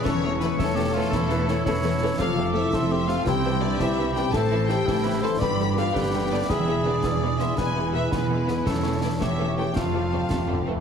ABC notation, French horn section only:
X:1
M:12/8
L:1/8
Q:3/8=111
K:Am
V:1 name="French horn section"
^C2 B, A,8 z | F2 E3 F G2 D E2 G | A2 G3 A B2 F G2 D | E2 D3 E ^G2 E B, B,2 |
^C2 D E2 G F4- F z |]